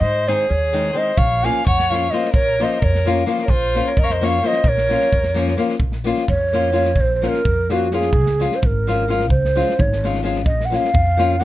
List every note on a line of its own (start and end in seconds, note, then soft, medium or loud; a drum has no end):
0.00 0.31 G#2 medium
0.00 0.30 C5 medium
0.00 0.30 D#5 loud
0.27 0.44 D#3 medium
0.27 0.45 G#3 soft
0.27 0.45 C4 medium
0.27 0.45 D#4 medium
0.27 0.49 G#4 medium
0.27 0.51 C5 medium
0.49 0.91 D#2 medium
0.49 0.95 G#4 medium
0.49 0.98 C#5 medium
0.73 0.90 D#3 medium
0.73 0.90 G#3 medium
0.73 0.90 C4 medium
0.73 0.90 D#4 medium
0.93 1.11 D#3 medium
0.93 1.11 G#3 medium
0.93 1.11 C4 medium
0.93 1.12 D#4 medium
0.93 1.19 C5 medium
0.93 1.19 D#5 medium
1.18 1.47 A#1 medium
1.18 1.47 C#5 medium
1.18 1.46 F5 medium
1.18 kick medium
1.43 1.60 F3 medium
1.43 1.61 A#3 soft
1.43 1.61 C#4 medium
1.43 1.61 F4 medium
1.43 1.66 F5 medium
1.43 1.66 G#5 medium
1.43 snare soft
1.66 2.07 F2 medium
1.66 1.91 C#5 loud
1.66 1.92 F#5 loud
1.66 kick loud
1.79 snare soft
1.90 2.06 F3 medium
1.90 2.07 A#3 medium
1.90 2.07 C#4 medium
1.90 2.07 F4 medium
1.90 2.15 C#5 medium
1.90 2.12 F5 medium
1.90 snare soft
2.10 2.27 F3 medium
2.10 2.28 A#3 medium
2.10 2.28 C#4 medium
2.10 2.28 F4 medium
2.10 2.32 C5 medium
2.10 2.33 D#5 medium
2.10 snare soft
2.24 snare soft
2.33 2.63 A#1 medium
2.33 2.63 A#4 medium
2.33 2.65 C#5 loud
2.33 kick medium
2.60 2.76 F3 medium
2.60 2.76 A#3 medium
2.60 2.77 C#4 medium
2.60 2.77 F4 medium
2.60 2.81 C5 medium
2.60 2.85 D#5 medium
2.60 snare soft
2.79 3.23 F2 medium
2.79 3.24 A#4 medium
2.79 kick loud
2.84 3.17 C#5 medium
2.95 snare soft
3.05 3.22 F3 medium
3.05 3.22 A#3 medium
3.05 3.22 C#4 medium
3.05 3.23 F4 medium
3.05 snare soft
3.26 3.43 F3 medium
3.26 3.43 A#3 medium
3.26 3.43 C#4 medium
3.26 3.44 F4 medium
3.26 snare soft
3.38 snare soft
3.43 3.52 A#4 medium
3.43 3.52 C#5 medium
3.48 3.79 A#1 medium
3.48 3.90 F4 medium
3.48 3.89 C5 loud
3.48 kick medium
3.74 3.92 F3 medium
3.74 3.92 A#3 medium
3.74 3.93 C#4 medium
3.74 3.92 F4 medium
3.74 snare soft
3.88 4.00 A#4 medium
3.88 4.01 C#5 medium
3.97 4.39 F2 medium
3.97 4.05 A#4 loud
3.97 4.06 D#5 medium
3.97 kick medium
4.03 4.13 C#5 medium
4.03 4.14 F5 medium
4.10 4.25 C5 medium
4.10 4.28 D#5 medium
4.10 snare soft
4.21 4.38 F3 medium
4.21 4.38 A#3 medium
4.21 4.38 C#4 medium
4.21 4.39 F4 medium
4.21 4.46 C#5 medium
4.21 snare soft
4.26 4.48 F5 medium
4.42 4.59 F3 medium
4.42 4.59 A#3 medium
4.42 4.59 C#4 soft
4.42 4.60 F4 medium
4.42 4.68 C5 medium
4.42 snare soft
4.47 4.70 D#5 loud
4.53 snare soft
4.64 4.94 A#1 medium
4.64 5.61 A#4 medium
4.64 kick loud
4.69 5.62 C#5 loud
4.78 snare soft
4.89 5.07 F3 medium
4.89 5.07 A#3 medium
4.89 5.08 C#4 medium
4.89 5.08 F4 medium
4.89 snare soft
5.01 snare soft
5.12 5.54 F2 medium
5.12 kick medium
5.24 snare soft
5.34 5.52 F3 medium
5.34 5.53 A#3 medium
5.34 5.53 C#4 medium
5.34 5.54 F4 medium
5.34 snare soft
5.47 snare soft
5.57 5.74 F3 medium
5.57 5.74 A#3 medium
5.57 5.75 C#4 medium
5.57 5.75 F4 medium
5.57 snare soft
5.69 snare soft
5.80 6.10 A#1 medium
5.80 kick medium
5.92 snare soft
6.04 6.23 F3 medium
6.04 6.23 A#3 medium
6.04 6.24 C#4 medium
6.04 6.24 F4 medium
6.04 snare soft
6.17 snare soft
6.28 6.97 F2 medium
6.28 7.02 C#5 loud
6.28 kick medium
6.53 6.70 F3 medium
6.53 6.70 A#3 medium
6.53 6.70 C#4 medium
6.53 6.71 F4 medium
6.53 snare soft
6.72 6.90 F3 medium
6.72 6.90 A#3 medium
6.72 6.90 C#4 medium
6.72 6.91 F4 medium
6.72 snare soft
6.85 snare soft
6.96 7.26 A#1 medium
6.96 kick medium
7.01 7.16 C5 loud
7.16 7.30 C5 medium
7.22 7.40 F3 medium
7.22 7.40 A#3 medium
7.22 7.40 C#4 medium
7.22 7.40 F4 medium
7.22 snare soft
7.28 7.73 A#4 medium
7.34 snare soft
7.45 8.15 F2 medium
7.45 kick medium
7.69 7.86 F3 medium
7.69 7.86 A#3 medium
7.69 7.87 C#4 medium
7.69 7.87 F4 medium
7.69 7.95 F#4 medium
7.69 snare soft
7.91 8.08 F3 medium
7.91 8.09 A#3 medium
7.91 8.09 C#4 medium
7.91 8.09 F4 medium
7.91 8.57 G#4 loud
7.91 snare soft
8.01 snare soft
8.13 8.43 C#2 medium
8.13 kick medium
8.26 snare soft
8.39 8.57 F3 medium
8.39 8.57 G#3 medium
8.39 8.57 C#4 soft
8.39 8.57 F4 medium
8.39 snare soft
8.52 8.67 C5 medium
8.52 snare soft
8.62 9.30 G#1 medium
8.62 9.29 A#4 medium
8.62 kick medium
8.87 9.03 F3 medium
8.87 9.04 G#3 medium
8.87 9.03 C#4 medium
8.87 9.04 F4 medium
8.87 snare soft
9.08 9.24 F3 medium
9.08 9.24 G#3 medium
9.08 9.25 C#4 medium
9.08 9.25 F4 medium
9.08 snare soft
9.20 snare soft
9.30 9.59 C#2 medium
9.30 9.82 C5 medium
9.30 kick medium
9.45 snare soft
9.55 9.72 F3 medium
9.55 9.73 G#3 medium
9.55 9.73 C#4 medium
9.55 9.73 F4 medium
9.60 snare soft
9.69 snare soft
9.79 10.45 G#1 medium
9.79 10.05 C#5 medium
9.79 kick medium
9.93 snare soft
10.04 10.20 F3 medium
10.04 10.19 G#3 medium
10.04 10.20 C#4 medium
10.04 10.20 F4 medium
10.04 snare soft
10.14 snare soft
10.23 10.39 F3 medium
10.23 10.40 G#3 medium
10.23 10.40 C#4 medium
10.23 10.41 F4 medium
10.23 snare soft
10.35 snare soft
10.45 10.75 A#1 medium
10.45 10.67 D#5 medium
10.45 kick medium
10.61 snare soft
10.65 10.77 F#5 medium
10.70 10.88 F3 medium
10.70 10.89 A#3 soft
10.70 10.89 C#4 medium
10.70 10.89 F4 medium
10.70 snare soft
10.76 11.42 F5 loud
10.84 snare soft
10.94 11.44 F2 medium
10.94 kick medium
11.17 11.34 F3 medium
11.17 11.34 A#3 medium
11.17 11.35 C#4 medium
11.17 11.35 F4 medium
11.17 snare soft
11.40 11.44 F3 medium
11.40 11.44 A#3 medium
11.40 11.44 C#4 medium
11.40 11.44 F#5 loud